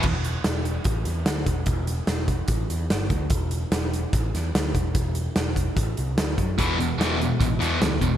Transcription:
<<
  \new Staff \with { instrumentName = "Distorted electric guitar" } { \clef bass \time 4/4 \key g \major \tempo 4 = 147 r1 | r1 | r1 | r1 |
<e, b, e>8 <e, b,>8 <e, b, e>8 <e, b,>8 <e, b,>8 <e, b, e>8 <e, b,>8 <e, b,>8 | }
  \new Staff \with { instrumentName = "Distorted electric guitar" } { \clef bass \time 4/4 \key g \major r1 | r1 | r1 | r1 |
<e, b, e>8 <e, b,>8 <e, b, e>8 <e, b,>8 <e, b,>8 <e, b, e>8 <e, b,>8 <e, b,>8 | }
  \new Staff \with { instrumentName = "Picked electric bass" } { \clef bass \time 4/4 \key g \major e,,4 e,,4 a,,8 e,8 d,8 e,,8 | e,,4 e,,4 a,,8 e,8 g,,8 d,8 | e,,4 e,,4 a,,8 e,8 d,8 e,,8 | e,,4 e,,4 a,,8 c,8 d,8 fis,8 |
e,,4 e,,4 a,,8 e,8 d,8 e,,8 | }
  \new DrumStaff \with { instrumentName = "Drums" } \drummode { \time 4/4 <cymc bd>8 hh8 <hh sn>8 hh8 <hh bd>8 hh8 <hh sn>8 <hh bd>8 | <hh bd>8 hh8 <hh sn>8 <hh bd>8 <hh bd>8 hh8 <hh sn>8 <hh bd>8 | <hh bd>8 hh8 <hh sn>8 hh8 <hh bd>8 <hh sn>8 <hh sn>8 <hh bd>8 | <hh bd>8 hh8 <hh sn>8 <hh bd>8 <hh bd>8 hh8 <hh sn>8 <hh bd>8 |
<hh bd>8 hh8 <hh sn>8 hh8 <hh bd>8 hh8 <hh sn>8 <hh bd>8 | }
>>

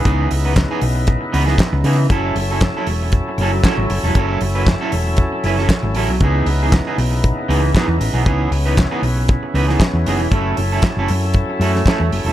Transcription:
<<
  \new Staff \with { instrumentName = "Clean electric guitar" } { \time 4/4 \key cis \minor \tempo 4 = 117 <e b dis' gis'>8 r16 <e b dis' b'>16 r16 <e b dis' gis'>8 r8. <e b dis' b'>16 <e b dis' gis'>16 r8 <e b dis' gis'>8 | <fis cis' e' a'>8 r16 <fis cis' e' a'>16 r16 <fis cis' e' a'>8 r8. <fis cis' e' a'>8 <fis cis' e' a'>8 r16 <fis cis' e' a'>16 | <fis cis' e' a'>8 r16 <fis cis' e' b'>16 r16 <fis cis' e' a'>8 r8. <fis cis' e' b'>16 <fis cis' e' a'>16 r8 <fis cis' e' a'>8 | <e b dis' gis'>8 r16 <e b dis' gis'>16 r16 <e b dis' gis'>8 r8. <e b dis' gis'>8 <e b dis' gis'>8 r16 <e b dis' gis'>16 |
<e b dis' gis'>8 r16 <e b dis' b'>16 r16 <e b dis' gis'>8 r8. <e b dis' b'>16 <e b dis' gis'>16 r8 <e b dis' gis'>8 | <a cis' e' a'>8 r16 <a cis' e' a'>16 r16 <a cis' e' a'>8 r8. <a cis' e' a'>8 <a cis' e' a'>8 r16 <a cis' e' a'>16 | }
  \new Staff \with { instrumentName = "Tonewheel organ" } { \time 4/4 \key cis \minor << { <cis b e'>1 | <fis cis' a'>1~ | <fis cis' a'>1 | <cis b e'>1~ |
<cis b e'>1 | <fis cis' a'>1 | } \\ { dis'1 | e'1~ | e'1 | dis'1 |
cis'1 | r1 | } >> }
  \new Staff \with { instrumentName = "Fingered electric bass" } { \clef bass \time 4/4 \key cis \minor cis,8 cis,8. r16 b,,8. r16 cis,8 r16 cis,16 cis8 | fis,,8 fis,,8. r16 e,,8. r16 fis,,8 r16 gis,,16 fis,,16 e,,16 | fis,,8 fis,,8. r16 e,,8. r16 fis,,8 r16 gis,,16 a,,16 b,,16 | cis,8 cis,8. r16 b,,8. r16 cis,8 r16 e,16 a,,16 b,,16 |
cis,8 cis,8. r16 b,,8. r16 cis,8 r16 e,16 fis,,16 e,,16 | fis,,8 fis,,8 r16 fis,,16 fis,8. r16 fis,8 r16 e,16 fis,,16 e,,16 | }
  \new DrumStaff \with { instrumentName = "Drums" } \drummode { \time 4/4 <hh bd>8 hho8 <hc hh bd sn>8 hho8 <hh bd>8 hho16 sn16 <hc hh bd sn>8 hho8 | <hh bd>8 hho8 <hc hh bd sn>8 hho8 <hh bd>8 hho8 <hc hh bd sn>8 hho8 | <hh bd>8 hho8 <hc hh bd sn>8 hho8 <hh bd>8 hho16 sn16 <hc hh bd sn>8 hho8 | <hh bd>8 hho8 <hc hh bd sn>8 hho8 <hh bd>8 hho8 <hc hh bd sn>8 hho8 |
<hh bd>8 hho8 <hc hh bd sn>8 hho8 <hh bd>8 hho16 sn16 <hc hh bd sn>8 hho8 | <hh bd>8 hho8 <hc hh bd sn>8 hho8 <hh bd>8 hho16 sn16 <hc hh bd sn>8 hho8 | }
>>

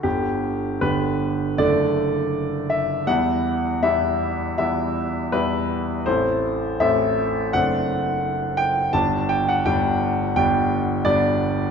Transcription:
<<
  \new Staff \with { instrumentName = "Grand piano" } { \time 4/4 \key g \major \tempo 4 = 82 g'4 b'4 d''4. e''8 | fis''4 e''4 e''4 b'4 | c''4 e''4 fis''4. g''8 | a''8 g''16 fis''16 g''4 g''4 d''4 | }
  \new Staff \with { instrumentName = "Grand piano" } { \time 4/4 \key g \major <g,, d b>4 <g,, d b g'>4 <fis,, d a a'>2 | <e, g b e'>4 <e, g b e'>4 <e, g b e'>4 <e, g b e'>4 | <a,, a c' e'>4 <a,, a c' e'>4 <fis,, a c' d'>2 | <g,, g b d'>4 <g,, g b d'>4 <g,, g b d'>4 <g,, g b d'>4 | }
>>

